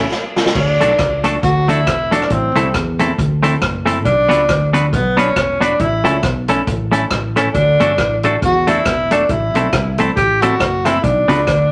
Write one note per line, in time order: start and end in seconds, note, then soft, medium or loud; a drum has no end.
0.00 0.11 C#4 loud
0.11 snare medium
0.36 snare medium
0.46 snare medium
0.55 0.77 D2 loud
0.55 1.21 D4 loud
0.55 kick loud
0.55 crash loud
0.81 0.96 B1 medium
0.81 0.92 A3 medium
0.81 0.92 D4 loud
0.81 0.93 F#4 medium
0.81 0.93 A4 medium
0.81 closed hi-hat medium
0.99 1.36 C#2 medium
0.99 kick loud
0.99 cross-stick loud
0.99 closed hi-hat medium
1.24 1.35 A3 medium
1.24 1.36 D4 medium
1.24 1.36 F#4 medium
1.24 1.36 A4 loud
1.24 closed hi-hat medium
1.43 1.88 D2 loud
1.43 1.71 F#4 loud
1.43 kick loud
1.43 closed hi-hat medium
1.68 1.80 A3 medium
1.68 1.80 D4 medium
1.68 2.15 E4 loud
1.68 1.80 F#4 medium
1.68 1.80 A4 medium
1.68 closed hi-hat medium
1.87 2.24 E1 medium
1.87 kick loud
1.87 cross-stick loud
1.87 closed hi-hat medium
2.11 2.23 A3 medium
2.11 2.23 D4 medium
2.11 2.34 D4 medium
2.11 2.24 F#4 medium
2.11 2.24 A4 loud
2.11 closed hi-hat medium
2.22 cross-stick medium
2.30 2.52 A1 loud
2.30 2.75 C4 medium
2.30 kick loud
2.30 closed hi-hat medium
2.55 2.71 C2 medium
2.55 2.67 A3 medium
2.55 2.67 C4 medium
2.55 2.67 E4 medium
2.55 2.67 A4 medium
2.55 closed hi-hat medium
2.74 3.12 E2 loud
2.74 kick loud
2.74 cross-stick loud
2.74 closed hi-hat medium
2.99 3.11 A3 medium
2.99 3.11 C4 loud
2.99 3.11 E4 medium
2.99 3.11 A4 loud
2.99 closed hi-hat medium
3.18 3.55 D2 medium
3.18 kick loud
3.18 closed hi-hat medium
3.43 3.54 A3 medium
3.43 3.54 C4 medium
3.43 3.55 E4 medium
3.43 3.55 A4 medium
3.43 closed hi-hat medium
3.62 4.05 F#1 medium
3.62 kick loud
3.62 cross-stick loud
3.62 closed hi-hat medium
3.86 3.98 A3 medium
3.86 3.98 C4 medium
3.86 3.98 E4 loud
3.86 3.98 A4 loud
3.86 closed hi-hat medium
4.05 4.27 B1 loud
4.05 4.70 D4 loud
4.05 kick loud
4.05 closed hi-hat medium
4.29 4.46 C#2 medium
4.29 4.41 B3 medium
4.29 4.41 D4 medium
4.29 4.41 F#4 medium
4.29 4.42 B4 medium
4.29 closed hi-hat medium
4.49 4.94 D2 loud
4.49 kick loud
4.49 cross-stick loud
4.49 closed hi-hat medium
4.73 4.85 B3 medium
4.73 4.85 D4 medium
4.73 4.85 F#4 loud
4.73 4.86 B4 medium
4.73 closed hi-hat medium
4.93 5.30 B1 loud
4.93 5.17 B3 medium
4.93 kick loud
4.93 closed hi-hat medium
5.17 5.29 B3 medium
5.17 5.63 C#4 medium
5.17 5.29 D4 medium
5.17 5.29 F#4 loud
5.17 5.29 B4 loud
5.17 closed hi-hat medium
5.36 5.73 E1 medium
5.36 kick loud
5.36 cross-stick loud
5.36 closed hi-hat medium
5.61 5.72 B3 medium
5.61 5.73 D4 medium
5.61 5.82 D4 loud
5.61 5.73 F#4 loud
5.61 5.73 B4 loud
5.61 closed hi-hat medium
5.80 6.04 A1 loud
5.80 6.24 E4 loud
5.80 kick loud
5.80 closed hi-hat medium
6.04 6.20 C#2 medium
6.04 6.16 A3 medium
6.04 6.16 C#4 medium
6.04 6.16 E4 medium
6.04 6.16 A4 medium
6.04 closed hi-hat medium
6.23 6.60 B1 loud
6.23 kick loud
6.23 cross-stick loud
6.23 closed hi-hat medium
6.48 6.60 A3 medium
6.48 6.61 C#4 medium
6.48 6.61 E4 loud
6.48 6.61 A4 loud
6.48 closed hi-hat medium
6.67 7.04 A1 medium
6.67 kick loud
6.67 closed hi-hat medium
6.92 7.03 A3 medium
6.92 7.04 C#4 medium
6.92 7.04 E4 medium
6.92 7.04 A4 medium
6.92 closed hi-hat medium
7.11 7.48 A1 medium
7.11 kick loud
7.11 cross-stick loud
7.11 closed hi-hat medium
7.36 7.48 A3 medium
7.36 7.48 C#4 medium
7.36 7.48 E4 medium
7.36 7.48 A4 loud
7.36 cross-stick medium
7.36 closed hi-hat medium
7.54 7.76 D2 loud
7.54 8.19 D4 loud
7.54 kick loud
7.54 closed hi-hat medium
7.80 7.95 G1 medium
7.80 7.91 A3 medium
7.80 7.92 D4 medium
7.80 7.92 F#4 loud
7.80 7.92 A4 loud
7.80 closed hi-hat medium
7.98 8.36 A1 medium
7.98 kick loud
7.98 cross-stick loud
7.98 closed hi-hat medium
8.23 8.35 A3 medium
8.23 8.35 D4 medium
8.23 8.36 F#4 medium
8.23 8.36 A4 loud
8.23 closed hi-hat medium
8.42 8.79 E2 medium
8.42 8.70 F#4 loud
8.42 kick loud
8.42 closed hi-hat medium
8.67 8.79 A3 medium
8.67 8.79 D4 medium
8.67 9.14 E4 loud
8.67 8.79 F#4 medium
8.67 8.79 A4 medium
8.67 closed hi-hat medium
8.85 9.23 E1 medium
8.85 kick loud
8.85 cross-stick loud
8.85 closed hi-hat medium
9.11 9.22 A3 medium
9.11 9.23 D4 medium
9.11 9.32 D4 medium
9.11 9.23 F#4 medium
9.11 9.23 A4 medium
9.11 closed hi-hat medium
9.29 9.51 A1 loud
9.29 9.99 E4 medium
9.29 kick loud
9.29 closed hi-hat medium
9.54 9.70 B1 medium
9.54 9.66 A3 medium
9.54 9.67 C4 medium
9.54 9.66 E4 medium
9.54 9.67 A4 medium
9.54 closed hi-hat medium
9.73 10.10 C2 loud
9.73 kick loud
9.73 cross-stick loud
9.73 closed hi-hat medium
9.98 10.10 A3 medium
9.98 10.10 C4 medium
9.98 10.10 E4 medium
9.98 10.10 A4 loud
9.98 closed hi-hat medium
10.16 10.54 A1 medium
10.16 10.43 G4 loud
10.16 kick loud
10.16 closed hi-hat medium
10.41 10.53 A3 medium
10.41 10.54 C4 loud
10.41 10.54 E4 medium
10.41 10.87 F#4 loud
10.41 10.54 A4 loud
10.41 closed hi-hat medium
10.60 10.97 F#1 medium
10.60 kick loud
10.60 cross-stick loud
10.60 closed hi-hat medium
10.85 10.97 A3 medium
10.85 10.97 C4 medium
10.85 11.04 E4 loud
10.85 10.97 E4 medium
10.85 10.98 A4 medium
10.85 cross-stick medium
10.85 closed hi-hat medium
11.03 11.25 B1 loud
11.03 11.72 D4 loud
11.03 kick loud
11.03 closed hi-hat medium
11.28 11.45 C#2 medium
11.28 11.40 B3 medium
11.28 11.40 D4 loud
11.28 11.40 F#4 medium
11.28 11.41 B4 loud
11.28 closed hi-hat medium
11.47 11.72 D2 loud
11.47 kick loud
11.47 cross-stick loud
11.47 closed hi-hat medium